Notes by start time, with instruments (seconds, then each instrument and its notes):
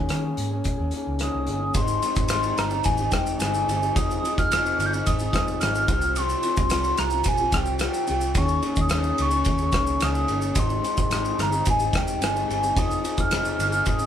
Already playing: clean electric guitar C#4 G#4
0.09 clean electric guitar D#3 A#3 C#4 G#4, fingered electric bass D#3, cross-stick, closed hi-hat
0.23 clean electric guitar A#3 C#4 G#4
0.37 fingered electric bass G#2, closed hi-hat
0.50 clean electric guitar A#3 C#4 G#4
0.64 fingered electric bass A#2, kick, closed hi-hat
0.77 fingered electric bass D#2, clean electric guitar A#3 C#4 G#4
0.91 clean electric guitar D#3 A#3 C#4 G#4, closed hi-hat
1.07 fingered electric bass C#2
1.19 clean electric guitar D#3 A#3 C#4 G#4, soft synth lead D#6, cross-stick, closed hi-hat
1.34 fingered electric bass C2
1.46 fingered electric bass G1, clean electric guitar D#3 A#3 C#4 G#4, closed hi-hat
1.60 clean electric guitar A#3 C#4 G#4
1.74 fingered electric bass G#1, clean electric guitar G#3 C4 D#4 G4, soft synth lead C6, kick, ride, shaker
1.88 shaker
2.02 clean electric guitar G#3 C4 D#4 G4, ride, shaker
2.15 fingered electric bass G#1, kick, shaker
2.28 clean electric guitar G#3 C4 D#4 G4, cross-stick, ride, shaker
2.43 shaker
2.58 fingered electric bass G1, soft synth lead A#5, cross-stick, ride, shaker
2.70 clean electric guitar D#4 G4, shaker
2.74 clean electric guitar C4
2.84 fingered electric bass G#1, soft synth lead G#5, kick, ride, shaker
2.97 clean electric guitar D#4 G4, shaker
3.02 clean electric guitar C4
3.11 clean electric guitar G#3 C4 D#4, soft synth lead G5, kick, cross-stick, ride, shaker
3.15 clean electric guitar G4
3.26 shaker
3.39 fingered electric bass G1, clean electric guitar G#3 C4 D#4 G4, soft synth lead G#5, cross-stick, ride, shaker
3.54 shaker
3.67 fingered electric bass G1, clean electric guitar G#3 C4 D#4 G4, ride, shaker
3.80 clean electric guitar C4 D#4 G4, shaker
3.94 fingered electric bass F1, clean electric guitar F3 C4 D#4 G#4, soft synth lead D#6, kick, ride, shaker
4.11 shaker
4.22 clean electric guitar F3 C4 D#4 G#4, ride, shaker
4.38 fingered electric bass F1, soft synth lead F6, kick, shaker
4.50 clean electric guitar F3 C4 D#4 G#4, cross-stick, ride, shaker
4.66 shaker
4.78 fingered electric bass G1, soft synth lead F6, ride, shaker
4.86 soft synth lead G6
4.91 clean electric guitar C4 D#4 G#4, soft synth lead F6, shaker
5.06 fingered electric bass G#1, soft synth lead D#6, kick, ride, shaker
5.18 clean electric guitar C4 D#4 G#4, shaker
5.32 clean electric guitar F3 C4 D#4 G#4, kick, cross-stick, ride, shaker
5.48 shaker
5.60 fingered electric bass G#1, clean electric guitar F3 C4 D#4 G#4, soft synth lead F6, cross-stick, ride, shaker
5.75 shaker
5.88 fingered electric bass C2, clean electric guitar F3 C4 F4 G4, kick, ride, shaker
6.01 clean electric guitar C4 F4 G4, shaker
6.16 clean electric guitar C3 F3 C4 F4 G4, soft synth lead C6, ride, shaker
6.29 shaker
6.42 clean electric guitar F3 C4 F4 G4, ride, shaker
6.57 fingered electric bass C2, kick, shaker
6.69 clean electric guitar C3 F3 C4 F4 G4, cross-stick, ride, shaker
6.84 shaker
6.97 fingered electric bass C2, soft synth lead A#5, cross-stick, ride, shaker
7.10 clean electric guitar C4 F4 G4, shaker
7.24 fingered electric bass A#1, kick, ride, shaker
7.28 soft synth lead G#5
7.37 clean electric guitar G4, shaker
7.41 clean electric guitar C4 F4
7.52 fingered electric bass C2, clean electric guitar F3 C4 F4 G4, kick, cross-stick, ride, shaker
7.57 soft synth lead G5
7.66 shaker
7.79 clean electric guitar C3 F3 C4 F4 G4, soft synth lead G5, cross-stick, ride, shaker
7.94 shaker
8.06 fingered electric bass C2, clean electric guitar F3 C4 F4 G4, ride, shaker
8.20 clean electric guitar C4 F4 G4, shaker
8.34 fingered electric bass D#2, clean electric guitar D#3 A#3 C#4 G#4, soft synth lead C#6, kick, ride, shaker
8.48 shaker
8.62 clean electric guitar D#3 A#3 C#4 G#4, ride, shaker
8.76 fingered electric bass D#2, kick, shaker
8.81 soft synth lead D#6
8.89 clean electric guitar D#3 A#3 C#4 G#4, cross-stick, ride, shaker
9.03 shaker
9.18 fingered electric bass C#2, soft synth lead C#6, ride, shaker
9.30 clean electric guitar A#3 C#4 G#4, shaker
9.45 fingered electric bass D#2, kick, ride, shaker
9.49 soft synth lead C#6
9.58 clean electric guitar A#3 C#4 G#4, shaker
9.72 fingered electric bass C2, clean electric guitar D#3 A#3 C#4 G#4, kick, cross-stick, ride, shaker
9.87 shaker
10.00 fingered electric bass C#2, clean electric guitar D#3 A#3 C#4 G#4, soft synth lead D#6, cross-stick, ride, shaker
10.15 shaker
10.27 fingered electric bass G1, clean electric guitar D#3 A#3 C#4 G#4, ride, shaker
10.40 clean electric guitar A#3 C#4 G#4, shaker
10.55 fingered electric bass G#1, clean electric guitar G#3 C4 D#4 G4, kick, ride, shaker
10.59 soft synth lead C6
10.70 shaker
10.82 clean electric guitar G#3 C4 D#4 G4, ride, shaker
10.97 fingered electric bass G#1, kick, shaker
11.01 soft synth lead C6
11.10 clean electric guitar G#3 C4 D#4 G4, cross-stick, ride, shaker
11.25 shaker
11.38 fingered electric bass G1, soft synth lead A#5, cross-stick, ride, shaker
11.52 clean electric guitar C4 D#4 G4, shaker
11.65 fingered electric bass G#1, kick, ride, shaker
11.70 soft synth lead G#5
11.79 clean electric guitar C4 D#4 G4, shaker
11.93 clean electric guitar G#3 C4 D#4, soft synth lead G5, kick, cross-stick, ride, shaker
11.97 clean electric guitar G4
12.07 shaker
12.21 fingered electric bass G1, clean electric guitar G#3 C4 D#4 G4, soft synth lead G#5, cross-stick, ride, shaker
12.36 shaker
12.48 fingered electric bass G1, clean electric guitar G#3 C4 D#4 G4, ride, shaker
12.61 clean electric guitar C4 D#4 G4, shaker
12.75 fingered electric bass F1, clean electric guitar F3 C4 D#4 G#4, soft synth lead D#6, kick, ride, shaker
12.91 shaker
13.01 clean electric guitar F3 C4 D#4 G#4, ride, shaker
13.18 fingered electric bass F1, soft synth lead F6, kick, shaker
13.30 clean electric guitar F3 C4 D#4 G#4, cross-stick, ride, shaker
13.45 shaker
13.59 fingered electric bass G1, soft synth lead F6, ride, shaker
13.70 clean electric guitar C4 D#4 G#4, shaker
13.86 fingered electric bass G#1, soft synth lead D#6, kick, ride, shaker
13.98 clean electric guitar C4 D#4 G#4, shaker